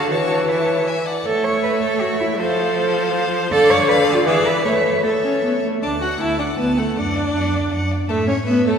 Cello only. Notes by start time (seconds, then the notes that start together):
0.10 F#4
0.49 E4
1.25 A4
1.44 C#5
1.64 B4
1.83 A4
2.01 F#4
2.20 E4
2.40 A4
3.52 A4
3.70 C#5
3.89 B4
4.08 A4
4.15 F4
4.26 G#4
4.47 B4
4.65 B4
5.04 A4
5.83 D2
6.21 D2
6.59 D2
6.97 F#2
7.35 F#2
7.73 F#2
8.09 A2
8.47 A2